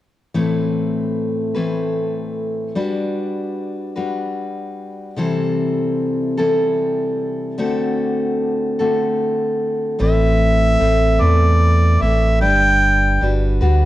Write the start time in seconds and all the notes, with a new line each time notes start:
0.34 A2 E3 A3 C4 E4 B4
1.55 A2 E3 A3 C4 E4 B4
2.75 G3 D4 F#4 B4
3.96 G3 D4 F#4 B4
5.16 C3 E3 G3 C4 E4 A4
6.37 C3 E3 G3 C4 E4 A4
7.58 D3 A3 C4 F#4 A4
8.79 D3 A3 C4 F#4 A4
9.99 A1 A2 E3 A3 C4 E4 B4 E5
10.79 A1 A3 C4 E4 B4
11.19 E2 A2 E3 A3 C4 E4 B4 D5
12.00 A1 A3 C4 E4 B4 E5
12.41 G1 G3 D4 B4 G5
13.21 G1 G3 D4 F#4 B4
13.61 D2 G3 D4 F#4 B4